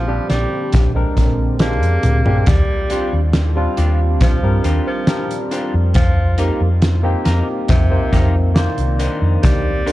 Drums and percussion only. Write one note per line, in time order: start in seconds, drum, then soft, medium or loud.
0.30 snare medium
0.30 closed hi-hat medium
0.72 kick loud
0.72 closed hi-hat loud
1.17 kick medium
1.17 closed hi-hat medium
1.59 snare loud
1.59 closed hi-hat medium
1.83 closed hi-hat medium
2.03 closed hi-hat medium
2.03 high tom medium
2.26 mid tom medium
2.46 kick loud
2.46 closed hi-hat medium
2.90 closed hi-hat medium
3.33 snare loud
3.33 closed hi-hat loud
3.77 closed hi-hat medium
4.21 kick loud
4.21 closed hi-hat medium
4.64 closed hi-hat medium
5.07 snare loud
5.07 closed hi-hat loud
5.31 closed hi-hat medium
5.51 closed hi-hat medium
5.94 kick loud
5.94 closed hi-hat medium
6.38 closed hi-hat medium
6.82 snare loud
6.82 closed hi-hat medium
7.25 snare medium
7.25 closed hi-hat medium
7.68 kick loud
7.68 closed hi-hat medium
8.13 kick medium
8.13 closed hi-hat medium
8.56 snare loud
8.56 closed hi-hat loud
8.78 closed hi-hat medium
9.00 closed hi-hat medium
9.43 kick loud
9.43 closed hi-hat medium
9.87 closed hi-hat medium